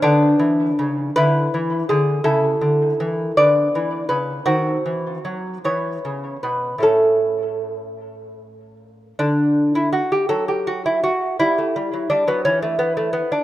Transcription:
<<
  \new Staff \with { instrumentName = "Lute" } { \time 6/8 \key a \major \tempo 4. = 54 d'4. b'4 gis'8 | a'4. d''4 b'8 | fis'4. cis''4 b'8 | a'2~ a'8 r8 |
\key e \dorian d'8. e'16 fis'16 g'16 a'16 g'16 fis'16 e'16 fis'8 | e'4 d'16 b16 cis'16 a16 b16 a16 b16 d'16 | }
  \new Staff \with { instrumentName = "Lute" } { \clef bass \time 6/8 \key a \major << { b4. e'4. | e'4. b4. | bis4. b4. | r2. |
\key e \dorian r2. | r2. | } \\ { d8 e8 cis8 d8 e8 d8 | cis8 d8 e8 d8 e8 cis8 | dis8 e8 fis8 e8 cis8 b,8 | <a, a cis'>2. |
d4. fis4. | g16 a16 g16 fis16 g16 fis16 e4. | } >> }
>>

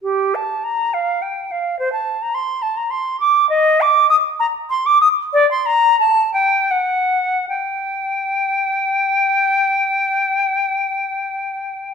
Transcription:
\new Staff \with { instrumentName = "Flute" } { \time 3/4 \key g \minor \tempo 4 = 93 g'8 a''8 bes''8 f''8 g''8 f''8 | c''16 a''8 bes''16 c'''8 a''16 bes''16 c'''8 d'''8 | ees''8 d'''8 ees'''8 bes''8 c'''16 d'''16 ees'''8 | d''16 c'''16 bes''8 a''8 g''8 fis''4 |
g''2.~ | g''2. | }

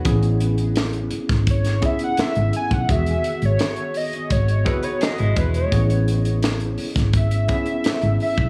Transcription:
<<
  \new Staff \with { instrumentName = "Analog synth lead" } { \time 4/4 \key a \lydian \tempo 4 = 85 r2 cis''8 e''16 fis''16 e''8 gis''16 fis''16 | e''8. cis''8. dis''8 cis''8 b'16 cis''16 dis''8 b'16 cis''16~ | cis''8. r4 r16 e''4. e''8 | }
  \new Staff \with { instrumentName = "Clean electric guitar" } { \time 4/4 \key a \lydian r1 | r2 r8 <e' cis''>16 <dis' b'>16 <b gis'>16 <gis e'>8. | r1 | }
  \new Staff \with { instrumentName = "Tine electric piano" } { \time 4/4 \key a \lydian <b cis' e' gis'>4. r4 <b cis' e' gis'>4 r8 | <dis b fis' gis'>4. r4 <b fis' gis' dis''>4 r8 | <b cis' e' gis'>4. r4 <b cis' e' gis'>4 r8 | }
  \new Staff \with { instrumentName = "Fingered electric bass" } { \clef bass \time 4/4 \key a \lydian a,,4. r16 gis,,4 r8 gis,,16 r16 b,,16 | e,,8 r16 gis,,16 r4 gis,,8 fis,,16 r8 gis,,16 e,,8 | a,,4. r16 gis,,4 r8 gis,,16 r16 b,,16 | }
  \new DrumStaff \with { instrumentName = "Drums" } \drummode { \time 4/4 <hh bd>16 hh16 hh16 hh16 <hh sn>16 hh16 hh16 <hh bd sn>16 <hh bd>16 <hh sn>16 <hh bd>16 hh16 <hh sn>16 hh16 hh16 <hh bd>16 | <hh bd>16 hh16 hh16 hh16 <hh sn>16 hh16 hho16 hh16 <hh bd>16 hh16 <hh bd>16 hh16 <hh sn>16 hh16 <hh bd>16 hh16 | <hh bd>16 hh16 hh16 hh16 <hh sn>16 hh16 hho16 <hh bd sn>16 <hh bd>16 hh16 <hh bd>16 hh16 <hh sn>16 hh16 hho16 <hh bd>16 | }
>>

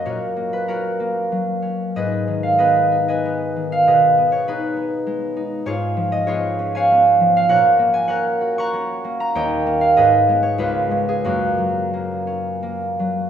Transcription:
<<
  \new Staff \with { instrumentName = "Harp" } { \time 3/4 \key fis \major \tempo 4 = 96 << { <cis'' dis'' fis''>8. b'16 ais'2 | dis''8. eis''16 dis''8. gis''4 eis''16 | dis''8. cis''16 b'2 | cis''8. dis''16 cis''8. gis''4 eis''16 |
fis''8. gis''16 fis''8. cis'''4 ais''16 | g''8. eis''16 dis''8. cis''16 b'8. gis'16 | fis'2. | } \\ { <fis' ais'>4 <cis' fis'>2 | <gis' b'>4 <gis' b'>8. <b' dis''>4~ <b' dis''>16 | <gis' b'>4 <dis' gis'>2 | <eis' gis'>4 <eis' gis'>8. <cis'' eis''>4~ <cis'' eis''>16 |
<ais' cis''>4 <ais' cis''>8. <fis'' ais''>4~ <fis'' ais''>16 | <cis'' dis''>4 <gis' b'>4 <eis' gis'>4 | <ais cis'>2. | } >> }
  \new Staff \with { instrumentName = "Harp" } { \time 3/4 \key fis \major <ais, fis ais cis'>8 ais4 ais8 fis8 cis'8 | gis,8 dis8 b8 dis'8 b8 dis8 | b,8 b4 b8 gis8 dis'8 | gis,8 eis8 b8 cis'8 b8 eis8 |
ais,8 ais8 cis'8 fis'8 cis'8 ais8 | dis,8 <ais cis'>8 gis,8 <gis b>8 cis,8 <gis cis'>8 | fis,8 fis8 ais8 cis'8 ais8 fis8 | }
>>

